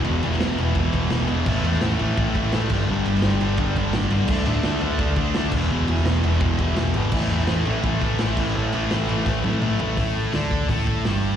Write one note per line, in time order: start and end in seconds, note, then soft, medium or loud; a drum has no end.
0.04 0.21 E1 loud
0.04 0.23 E2 loud
0.04 0.24 B2 loud
0.04 0.25 E3 loud
0.04 ride loud
0.23 0.39 E1 medium
0.23 0.39 E2 medium
0.23 0.40 B2 loud
0.23 0.42 E3 loud
0.23 ride medium
0.32 snare soft
0.40 0.56 E1 medium
0.40 0.57 E2 medium
0.40 0.58 B2 medium
0.40 0.59 E3 loud
0.40 snare loud
0.40 ride loud
0.58 0.74 E1 loud
0.58 0.76 E2 medium
0.58 0.77 B2 medium
0.58 0.78 E3 loud
0.58 ride medium
0.75 1.07 E1 loud
0.75 0.93 E2 medium
0.75 0.94 B2 loud
0.75 0.94 E3 loud
0.75 kick loud
0.75 ride loud
0.93 1.11 E2 medium
0.93 1.12 B2 medium
0.93 1.13 E3 loud
0.93 kick medium
0.93 ride medium
1.10 1.27 E1 medium
1.10 1.28 E2 medium
1.10 1.29 B2 medium
1.10 1.29 E3 loud
1.10 snare loud
1.10 ride loud
1.28 1.45 E1 loud
1.28 1.46 E2 medium
1.28 1.46 B2 medium
1.28 1.46 E3 medium
1.28 ride medium
1.46 1.62 A1 loud
1.46 1.65 A2 medium
1.46 1.65 E3 loud
1.46 1.66 A3 loud
1.46 kick loud
1.46 crash loud
1.63 1.80 E2 medium
1.63 1.83 A2 loud
1.63 1.83 E3 loud
1.63 1.84 A3 loud
1.63 ride medium
1.73 snare soft
1.81 1.97 A1 loud
1.81 2.00 A2 medium
1.81 2.01 E3 medium
1.81 snare loud
1.81 ride loud
1.86 2.01 A3 loud
1.99 2.16 A1 medium
1.99 2.18 A2 medium
1.99 2.18 E3 medium
1.99 2.19 A3 loud
1.99 ride medium
2.17 2.33 A1 loud
2.17 2.35 A2 loud
2.17 2.35 E3 medium
2.17 2.35 A3 loud
2.17 kick loud
2.17 ride loud
2.35 2.51 A2 medium
2.35 2.52 A2 medium
2.35 2.53 E3 loud
2.35 2.54 A3 loud
2.35 kick loud
2.35 ride medium
2.52 2.70 A1 medium
2.52 2.70 A2 medium
2.52 2.70 E3 loud
2.52 2.71 A3 loud
2.52 snare loud
2.52 ride loud
2.70 2.86 G1 loud
2.70 2.89 G2 medium
2.70 2.89 D3 medium
2.70 2.90 G3 medium
2.70 kick loud
2.70 crash loud
2.89 3.05 G1 loud
2.89 3.05 G2 loud
2.89 3.07 D3 loud
2.89 3.07 G3 loud
3.05 3.21 G1 medium
3.05 3.23 G2 loud
3.05 3.24 D3 loud
3.05 3.25 G3 loud
3.05 ride medium
3.15 snare soft
3.22 3.40 G1 medium
3.22 3.41 G2 medium
3.22 3.42 D3 medium
3.22 3.43 G3 medium
3.22 snare loud
3.22 ride loud
3.41 3.58 G1 loud
3.41 3.58 G2 medium
3.41 3.59 D3 medium
3.41 3.59 G3 medium
3.41 ride medium
3.57 3.90 G1 medium
3.57 3.76 G2 medium
3.57 3.76 D3 medium
3.57 3.77 G3 loud
3.57 kick loud
3.57 ride loud
3.76 3.94 G2 medium
3.76 3.95 D3 medium
3.76 3.96 G3 medium
3.76 kick medium
3.76 ride medium
3.93 4.11 G1 medium
3.93 4.11 G2 medium
3.93 4.12 D3 medium
3.93 4.12 G3 loud
3.93 snare loud
3.93 ride loud
4.11 4.29 G1 medium
4.11 4.29 G2 medium
4.11 4.28 D3 medium
4.11 4.30 G3 medium
4.11 ride medium
4.28 4.45 D2 loud
4.28 4.45 D3 loud
4.28 4.46 A3 loud
4.28 4.47 D4 loud
4.28 kick loud
4.28 crash loud
4.46 4.63 A2 medium
4.46 4.63 D3 loud
4.46 4.64 A3 medium
4.46 4.65 D4 loud
4.46 ride medium
4.63 4.81 D2 medium
4.63 4.80 D3 medium
4.63 4.81 A3 loud
4.63 4.82 D4 medium
4.63 snare loud
4.63 ride loud
4.81 4.98 D2 medium
4.81 4.99 D3 medium
4.81 5.00 A3 medium
4.81 5.00 D4 medium
4.81 ride medium
4.99 5.15 D2 medium
4.99 5.17 D3 medium
4.99 5.18 A3 medium
4.99 5.19 D4 loud
4.99 kick loud
4.99 ride loud
5.16 5.33 D3 medium
5.16 5.35 D3 medium
5.16 5.36 A3 medium
5.16 kick medium
5.16 ride medium
5.20 5.37 D4 loud
5.34 5.51 D2 medium
5.34 5.53 D3 medium
5.34 5.53 A3 medium
5.34 5.54 D4 loud
5.34 snare loud
5.34 ride loud
5.52 5.69 E1 medium
5.52 5.70 E2 medium
5.52 5.71 B2 loud
5.52 kick loud
5.52 crash loud
5.56 5.72 E3 medium
5.70 5.87 E1 loud
5.70 5.87 E2 loud
5.70 5.88 B2 loud
5.70 5.89 E3 loud
5.87 6.04 E1 medium
5.87 6.03 E2 loud
5.87 6.04 B2 loud
5.87 6.05 E3 loud
5.87 ride medium
5.98 snare soft
6.04 6.22 E1 medium
6.04 6.23 E2 medium
6.04 6.25 B2 loud
6.04 6.26 E3 medium
6.04 snare loud
6.04 ride loud
6.23 6.40 E1 loud
6.23 6.41 E2 medium
6.23 6.42 B2 medium
6.23 6.43 E3 medium
6.23 ride medium
6.40 6.73 E1 loud
6.40 6.59 E2 medium
6.40 6.60 B2 loud
6.40 6.61 E3 loud
6.40 kick loud
6.40 ride loud
6.59 6.77 E2 loud
6.59 6.79 B2 medium
6.59 6.80 E3 loud
6.59 kick loud
6.59 ride medium
6.76 6.94 E1 medium
6.76 6.96 E2 medium
6.76 6.96 B2 medium
6.76 snare loud
6.76 ride loud
6.80 6.97 E3 loud
6.94 7.12 G#1 loud
6.94 7.13 E2 medium
6.94 7.13 B2 loud
6.94 7.15 E3 loud
6.94 ride medium
7.12 7.29 A1 loud
7.12 7.31 A2 loud
7.12 7.32 E3 loud
7.12 kick loud
7.12 crash loud
7.16 7.33 A3 loud
7.30 7.47 E2 loud
7.30 7.49 A2 medium
7.30 7.50 E3 loud
7.30 7.51 A3 loud
7.30 ride medium
7.39 snare soft
7.47 7.65 A1 medium
7.47 7.67 A2 medium
7.47 7.67 E3 medium
7.47 7.68 A3 loud
7.47 snare loud
7.47 ride loud
7.65 7.83 A1 medium
7.65 7.84 A2 medium
7.65 7.85 E3 medium
7.65 7.85 A3 medium
7.65 ride medium
7.83 8.00 A1 loud
7.83 8.02 A2 medium
7.83 8.03 E3 medium
7.83 8.03 A3 loud
7.83 kick loud
7.83 ride loud
8.01 8.18 A2 medium
8.01 8.20 A2 medium
8.01 8.20 E3 medium
8.01 8.21 A3 medium
8.01 kick loud
8.01 ride medium
8.19 8.36 A1 medium
8.19 8.38 A2 medium
8.19 8.39 E3 loud
8.19 8.40 A3 loud
8.19 snare loud
8.19 ride loud
8.37 8.53 A1 loud
8.37 8.54 A2 loud
8.37 8.56 E3 loud
8.37 8.56 A3 loud
8.37 kick loud
8.37 crash loud
8.55 8.72 A1 loud
8.55 8.72 A2 loud
8.55 8.73 E3 loud
8.55 8.73 A3 loud
8.73 8.90 A1 medium
8.73 8.90 A2 loud
8.73 8.91 E3 loud
8.73 8.92 A3 loud
8.73 ride medium
8.91 9.08 A1 medium
8.91 9.08 A2 medium
8.91 9.08 E3 medium
8.91 9.09 A3 medium
8.91 snare loud
8.91 ride loud
9.09 9.26 A1 loud
9.09 9.25 A2 medium
9.09 9.26 E3 medium
9.09 9.25 A3 loud
9.09 ride medium
9.26 9.59 A1 medium
9.26 9.43 A2 medium
9.26 9.44 E3 medium
9.26 9.44 A3 loud
9.26 kick loud
9.26 snare medium
9.44 9.62 A2 medium
9.44 9.63 E3 medium
9.44 9.64 A3 loud
9.44 high tom medium
9.62 9.78 A1 medium
9.62 9.78 A2 medium
9.62 9.80 E3 medium
9.62 9.80 A3 loud
9.62 mid tom medium
9.80 9.96 A1 medium
9.80 9.97 A2 medium
9.80 9.97 E3 medium
9.80 9.97 A3 medium
9.80 floor tom loud
9.97 10.31 A1 loud
9.97 10.33 A2 medium
9.97 10.34 A3 loud
9.97 kick loud
9.97 open hi-hat medium
10.33 10.67 D2 medium
10.33 10.69 D3 medium
10.33 10.70 D4 loud
10.33 snare loud
10.33 open hi-hat medium
10.51 kick medium
10.69 11.03 A1 loud
10.69 11.05 A2 medium
10.69 11.05 A3 medium
10.69 kick medium
10.69 open hi-hat medium
10.87 kick medium
11.05 11.36 G1 medium
11.05 11.36 G2 medium
11.05 11.36 G3 loud
11.05 snare loud
11.05 open hi-hat medium